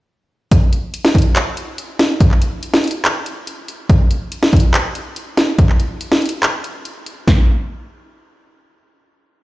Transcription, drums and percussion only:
0.51 kick, closed hi-hat
0.73 closed hi-hat
0.94 closed hi-hat
1.05 snare
1.15 kick, closed hi-hat
1.18 closed hi-hat
1.22 closed hi-hat
1.36 clap, closed hi-hat
1.57 closed hi-hat
1.78 closed hi-hat
1.99 snare, closed hi-hat
2.20 kick, closed hi-hat
2.31 clap
2.42 closed hi-hat
2.63 closed hi-hat
2.74 snare
2.84 closed hi-hat
2.87 closed hi-hat
2.91 closed hi-hat
3.05 clap, closed hi-hat
3.26 closed hi-hat
3.47 closed hi-hat
3.68 closed hi-hat
3.89 kick, closed hi-hat
4.11 closed hi-hat
4.32 closed hi-hat
4.43 snare
4.53 kick, closed hi-hat
4.57 closed hi-hat
4.60 closed hi-hat
4.74 clap, closed hi-hat
4.95 closed hi-hat
5.16 closed hi-hat
5.37 snare, closed hi-hat
5.59 kick, closed hi-hat
5.69 clap
5.80 closed hi-hat
6.01 closed hi-hat
6.12 snare
6.22 closed hi-hat
6.26 closed hi-hat
6.29 closed hi-hat
6.43 clap, closed hi-hat
6.64 closed hi-hat
6.85 closed hi-hat
7.06 closed hi-hat
7.28 kick, snare, open hi-hat

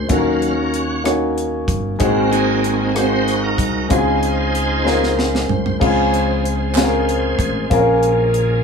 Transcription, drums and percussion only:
0.09 kick, closed hi-hat
0.42 closed hi-hat
0.74 closed hi-hat
1.05 cross-stick, closed hi-hat
1.38 closed hi-hat
1.68 kick, closed hi-hat
2.00 kick, closed hi-hat
2.33 closed hi-hat
2.64 closed hi-hat
2.96 cross-stick, closed hi-hat
3.28 closed hi-hat
3.58 kick, closed hi-hat
3.90 kick, closed hi-hat
4.23 closed hi-hat
4.55 closed hi-hat
4.87 snare
5.03 snare
5.19 snare
5.35 snare
5.49 floor tom
5.66 floor tom
5.81 kick, crash
6.14 closed hi-hat
6.45 closed hi-hat
6.75 snare, clap, closed hi-hat
7.09 closed hi-hat
7.39 kick, closed hi-hat
7.71 kick, closed hi-hat
8.03 closed hi-hat
8.34 closed hi-hat

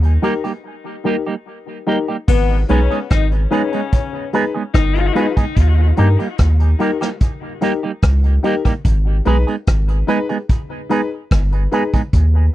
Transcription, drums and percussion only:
0.03 closed hi-hat
0.23 closed hi-hat
0.44 closed hi-hat
2.28 kick, crash
2.69 closed hi-hat
2.91 closed hi-hat
3.10 kick, cross-stick, closed hi-hat
3.32 closed hi-hat
3.52 closed hi-hat
3.73 closed hi-hat
3.92 kick, closed hi-hat
4.33 closed hi-hat
4.74 kick, cross-stick, closed hi-hat
4.96 closed hi-hat
5.16 closed hi-hat
5.37 kick, closed hi-hat
5.57 kick, closed hi-hat
5.97 closed hi-hat
6.19 closed hi-hat
6.38 kick, cross-stick, closed hi-hat
6.60 closed hi-hat
6.80 closed hi-hat
7.01 cross-stick, closed hi-hat
7.20 kick, closed hi-hat
7.61 closed hi-hat
8.02 kick, cross-stick, closed hi-hat
8.24 closed hi-hat
8.44 closed hi-hat
8.65 kick, closed hi-hat
8.85 kick, closed hi-hat
9.25 closed hi-hat
9.48 closed hi-hat
9.67 kick, cross-stick, closed hi-hat
9.88 closed hi-hat
10.08 closed hi-hat
10.29 closed hi-hat
10.49 kick, closed hi-hat
10.90 closed hi-hat
11.31 kick, cross-stick, closed hi-hat
11.52 closed hi-hat
11.72 closed hi-hat
11.94 kick, closed hi-hat
12.13 kick, closed hi-hat

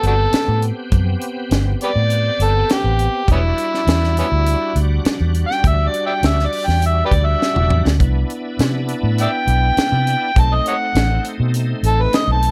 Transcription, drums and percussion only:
0.03 closed hi-hat
0.33 snare, closed hi-hat
0.62 closed hi-hat
0.92 kick, closed hi-hat
1.21 closed hi-hat
1.51 snare, closed hi-hat
1.81 closed hi-hat
2.10 closed hi-hat
2.40 closed hi-hat
2.69 snare, closed hi-hat
2.99 closed hi-hat
3.28 kick, closed hi-hat
3.58 closed hi-hat
3.74 snare
3.87 snare, closed hi-hat
4.04 snare
4.17 closed hi-hat
4.46 closed hi-hat
4.76 closed hi-hat
5.05 snare, closed hi-hat
5.34 closed hi-hat
5.51 snare
5.64 kick, closed hi-hat
5.94 closed hi-hat
6.23 snare, closed hi-hat
6.39 snare
6.52 open hi-hat
6.69 snare
6.82 closed hi-hat
7.11 kick, closed hi-hat
7.42 snare
7.56 mid tom
7.70 mid tom
7.87 snare
8.00 kick, closed hi-hat
8.30 closed hi-hat
8.59 snare, closed hi-hat
8.88 closed hi-hat
9.18 closed hi-hat
9.47 closed hi-hat
9.77 snare, closed hi-hat
10.07 closed hi-hat
10.36 kick, closed hi-hat
10.66 closed hi-hat
10.95 snare, closed hi-hat
11.24 closed hi-hat
11.54 closed hi-hat
11.83 closed hi-hat
12.13 snare, closed hi-hat
12.42 closed hi-hat

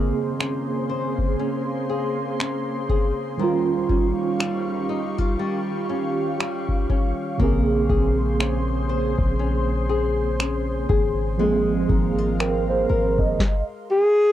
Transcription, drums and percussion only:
0.40 finger snap
1.18 kick
2.40 finger snap
2.89 kick
3.89 kick
4.40 finger snap
5.18 kick
6.40 finger snap
6.68 kick
6.89 kick
7.39 kick
7.89 kick
8.40 finger snap
9.18 kick
10.40 finger snap
10.89 kick
11.89 kick
12.40 finger snap
13.18 kick
13.39 kick, snare

